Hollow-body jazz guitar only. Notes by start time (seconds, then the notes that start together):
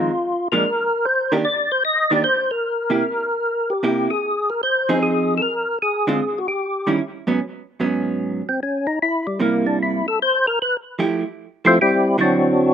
Already playing: C4
0.52 A#2 F3 G#3 D4
1.32 D#3 A#3 D4 G4
2.11 D#3 A#3 D4 G4
2.90 C3 A#3 E4 G4
3.83 C3 A#3 E4 G4
4.89 F3 C4 D#4 G#4
6.07 D3 G#3 C4 F4
6.87 D#3 G3 C#4 E4
7.27 G#2 F#3 B3 C#4
7.80 G#2 F#3 B3 C#4
9.40 C3 G3 A#3 E4
10.99 F3 A3 E4 G4
11.65 F3 A3 E4 G4
12.18 D3 F#3 C4 E4